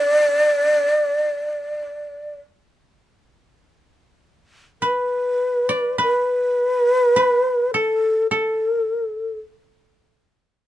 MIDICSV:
0, 0, Header, 1, 3, 480
1, 0, Start_track
1, 0, Tempo, 1181102
1, 465, Tempo, 1257862
1, 1425, Time_signature, 4, 2, 24, 8
1, 1425, Tempo, 1176471
1, 2385, Tempo, 1156069
1, 3345, Tempo, 1115242
1, 3825, Tempo, 1067616
1, 4379, End_track
2, 0, Start_track
2, 0, Title_t, "Shakuhachi"
2, 0, Program_c, 0, 77
2, 0, Note_on_c, 0, 74, 94
2, 926, Note_off_c, 0, 74, 0
2, 1899, Note_on_c, 0, 71, 69
2, 2364, Note_off_c, 0, 71, 0
2, 2391, Note_on_c, 0, 71, 79
2, 3093, Note_off_c, 0, 71, 0
2, 3105, Note_on_c, 0, 69, 58
2, 3326, Note_off_c, 0, 69, 0
2, 3340, Note_on_c, 0, 69, 60
2, 3805, Note_off_c, 0, 69, 0
2, 4379, End_track
3, 0, Start_track
3, 0, Title_t, "Koto"
3, 0, Program_c, 1, 107
3, 1898, Note_on_c, 1, 71, 50
3, 2253, Note_on_c, 1, 74, 52
3, 2371, Note_off_c, 1, 71, 0
3, 2373, Note_on_c, 1, 71, 57
3, 2618, Note_off_c, 1, 71, 0
3, 2618, Note_on_c, 1, 70, 57
3, 2676, Note_off_c, 1, 70, 0
3, 2676, Note_on_c, 1, 69, 57
3, 2861, Note_off_c, 1, 69, 0
3, 2862, Note_on_c, 1, 71, 52
3, 2915, Note_off_c, 1, 74, 0
3, 3103, Note_on_c, 1, 69, 44
3, 3338, Note_off_c, 1, 69, 0
3, 3339, Note_on_c, 1, 69, 45
3, 3609, Note_off_c, 1, 71, 0
3, 4173, Note_off_c, 1, 69, 0
3, 4379, End_track
0, 0, End_of_file